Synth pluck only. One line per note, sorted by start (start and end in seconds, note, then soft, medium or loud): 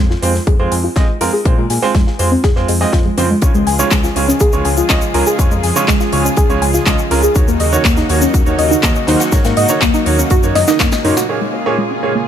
0.10 0.18 F4 medium
0.35 0.42 C4 medium
0.47 0.55 G#4 loud
0.72 0.79 G#5 medium
0.84 0.95 F4 medium
0.96 1.04 G#3 medium
1.21 1.26 F4 medium
1.33 1.41 G#4 medium
1.58 1.65 G#3 medium
1.70 1.78 G#5 medium
1.95 2.02 G#3 medium
2.07 2.15 F4 medium
2.32 2.39 C4 medium
2.44 2.52 G#4 loud
2.69 2.80 G#3 loud
2.81 2.88 G#5 medium
2.93 3.01 F4 medium
3.05 3.13 G#3 medium
3.18 3.29 C4 medium
3.30 3.38 G#3 medium
3.55 3.62 G#3 medium
3.67 3.74 G#5 medium
3.91 3.99 G#3 medium
4.04 4.11 F4 medium
4.28 4.36 C#4 medium
4.41 4.48 G#4 loud
4.65 4.73 G#5 medium
4.77 4.89 F4 medium
4.90 4.97 G#3 medium
5.14 5.19 F4 medium
5.27 5.34 G#4 medium
5.51 5.59 G#3 medium
5.64 5.71 G#5 medium
5.88 5.96 G#3 medium
6.01 6.08 F4 medium
6.25 6.33 C#4 medium
6.37 6.45 G#4 loud
6.62 6.70 G#5 medium
6.74 6.86 F4 medium
6.87 6.94 G#3 medium
7.11 7.16 F4 medium
7.23 7.31 G#4 medium
7.48 7.56 A#3 medium
7.60 7.68 D#5 medium
7.85 7.92 A#3 medium
7.97 8.05 D#4 medium
8.22 8.29 C#4 medium
8.34 8.42 F#4 loud
8.59 8.66 D#5 medium
8.71 8.82 D#4 medium
8.83 8.91 A#3 medium
9.08 9.12 D#4 medium
9.20 9.28 F#4 medium
9.45 9.52 A#3 medium
9.57 9.65 D#5 medium
9.82 9.89 A#3 medium
9.94 10.01 D#4 medium
10.19 10.26 C#4 medium
10.31 10.38 F#4 loud
10.55 10.63 D#5 medium
10.68 10.79 D#4 medium
10.80 10.88 A#3 medium
11.04 11.09 D#4 medium
11.17 11.24 F#4 medium
11.41 11.49 G#3 medium
11.54 11.61 C#5 medium
11.78 11.86 G#3 medium
11.91 11.98 C#4 medium
12.15 12.23 A#3 medium